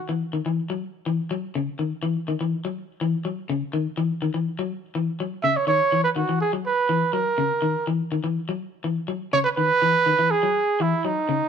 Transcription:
0.09 0.22 E3 medium
0.33 0.40 D#3 medium
0.46 0.59 E3 medium
0.70 0.83 F#3 medium
1.06 1.19 E3 medium
1.31 1.43 F#3 medium
1.55 1.68 C#3 medium
1.79 1.92 D#3 medium
2.03 2.16 E3 medium
2.28 2.35 D#3 medium
2.41 2.53 E3 medium
2.65 2.77 F#3 medium
3.01 3.14 E3 medium
3.25 3.38 F#3 medium
3.49 3.62 C#3 medium
3.73 3.86 D#3 medium
3.97 4.10 E3 medium
4.22 4.29 D#3 medium
4.34 4.47 E3 medium
4.59 4.72 F#3 medium
4.95 5.08 E3 medium
5.20 5.33 F#3 medium
5.43 5.57 C#3 medium
5.43 5.58 E5 loud
5.57 5.67 C#5 medium
5.67 5.80 D#3 medium
5.67 6.02 C#5 loud
5.92 6.05 E3 medium
6.04 6.09 B4 medium
6.16 6.23 D#3 medium
6.16 6.39 F#4 medium
6.29 6.42 E3 medium
6.41 6.52 G#4 medium
6.53 6.66 F#3 medium
6.66 7.14 B4 medium
6.89 7.02 E3 medium
7.13 7.26 F#3 medium
7.13 7.86 A#4 medium
7.38 7.51 C#3 medium
7.62 7.75 D#3 medium
7.87 8.00 E3 medium
8.12 8.18 D#3 medium
8.24 8.37 E3 medium
8.49 8.61 F#3 medium
8.84 8.97 E3 medium
9.08 9.21 F#3 medium
9.33 9.46 C#3 medium
9.33 9.39 C#5 loud
9.44 9.50 B4 loud
9.57 9.70 D#3 medium
9.57 10.32 B4 loud
9.82 9.95 E3 medium
10.06 10.13 D#3 medium
10.19 10.32 E3 medium
10.31 10.83 G#4 medium
10.43 10.56 F#3 medium
10.80 10.93 E3 medium
10.80 11.07 E4 medium
11.05 11.17 F#3 medium
11.05 11.48 D#4 medium
11.29 11.41 C#3 medium

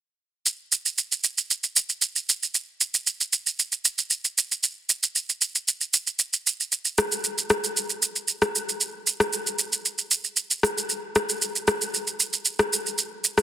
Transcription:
0.46 shaker medium
0.72 shaker medium
0.86 shaker medium
0.98 shaker medium
1.12 shaker soft
1.24 shaker medium
1.38 shaker medium
1.51 shaker medium
1.64 shaker soft
1.76 shaker loud
1.89 shaker soft
2.02 shaker medium
2.16 shaker medium
2.29 shaker medium
2.43 shaker soft
2.55 shaker medium
2.81 shaker medium
2.94 shaker medium
3.07 shaker medium
3.21 shaker soft
3.33 shaker medium
3.47 shaker medium
3.59 shaker medium
3.72 shaker soft
3.85 shaker loud
3.98 shaker soft
4.10 shaker medium
4.25 shaker medium
4.38 shaker medium
4.52 shaker soft
4.63 shaker medium
4.89 shaker medium
5.03 shaker medium
5.16 shaker medium
5.29 shaker soft
5.41 shaker medium
5.55 shaker medium
5.68 shaker medium
5.81 shaker soft
5.94 shaker loud
6.07 shaker soft
6.19 shaker medium
6.33 shaker medium
6.47 shaker medium
6.60 shaker soft
6.72 shaker medium
6.85 shaker medium
6.98 cross-stick medium
6.98 shaker medium
7.12 shaker medium
7.24 shaker medium
7.38 shaker soft
7.50 cross-stick medium
7.50 shaker medium
7.64 shaker medium
7.77 shaker medium
7.90 shaker soft
8.02 shaker loud
8.16 shaker soft
8.28 shaker medium
8.42 cross-stick medium
8.42 shaker medium
8.55 shaker medium
8.69 shaker soft
8.81 shaker medium
9.07 shaker medium
9.20 cross-stick medium
9.20 shaker medium
9.33 shaker medium
9.47 shaker soft
9.59 shaker medium
9.73 shaker medium
9.85 shaker medium
9.98 shaker soft
10.11 shaker loud
10.24 shaker soft
10.37 shaker medium
10.51 shaker medium
10.63 cross-stick medium
10.63 shaker medium
10.78 shaker soft
10.89 shaker medium
11.16 cross-stick medium
11.16 shaker medium
11.29 shaker medium
11.42 shaker medium
11.56 shaker soft
11.68 cross-stick medium
11.68 shaker medium
11.81 shaker medium
11.94 shaker medium
12.07 shaker soft
12.20 shaker loud
12.33 shaker soft
12.45 shaker medium
12.59 cross-stick medium
12.59 shaker medium
12.73 shaker medium
12.86 shaker soft
12.98 shaker medium
13.24 shaker medium
13.38 cross-stick medium
13.38 shaker medium

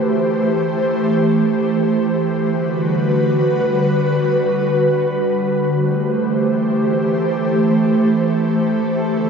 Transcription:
0.00 2.30 E3 medium
0.00 2.30 A3 medium
0.00 2.30 G4 medium
0.00 2.30 C5 loud
2.33 5.64 D3 medium
2.33 5.63 G3 medium
2.33 5.63 F#4 medium
2.33 5.64 B4 medium
5.67 8.97 E3 medium
5.67 9.30 A3 medium
5.67 8.97 G4 medium
5.67 8.97 C5 medium
9.00 9.30 D3 medium
9.00 9.30 F#4 medium
9.00 9.30 B4 medium

